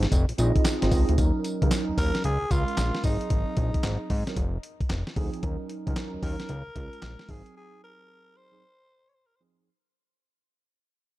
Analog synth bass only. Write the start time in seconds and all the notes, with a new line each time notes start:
0.12 F1
0.29 A#1
0.39 A#1
0.83 G#1
0.92 C#2
1.09 D2
1.18 D#2
1.62 C#2
1.89 D#2
1.98 D#2
2.25 C#2
2.42 C#2
2.51 C#2
2.78 A#1
3.04 G#1
3.31 G#1
3.57 A#1
3.84 G#1
4.10 G#2
4.37 F1
4.90 F1
5.16 D2
5.43 D#2
5.87 C#2
6.14 D#2
6.23 D#2
6.49 C#2
6.67 C#2
6.76 C#2
7.03 A#1
7.29 G#1